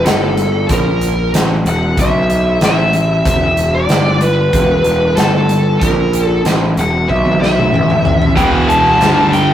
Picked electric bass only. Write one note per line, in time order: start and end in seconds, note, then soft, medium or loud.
0.06 0.66 G1 medium
0.70 1.30 A#1 medium
1.34 1.63 A1 medium
1.65 1.95 E1 medium
1.98 2.57 B1 medium
2.61 3.21 A1 medium
3.26 3.85 E1 medium
3.89 4.49 G1 medium
4.53 4.83 E1 medium
4.85 5.15 E1 medium
5.17 5.77 G1 medium
5.82 6.41 A#1 medium
6.46 6.75 A1 medium
6.77 7.07 E1 medium
7.10 7.69 B1 medium
7.73 8.32 A1 medium
8.37 8.97 E1 medium
9.01 9.54 G1 medium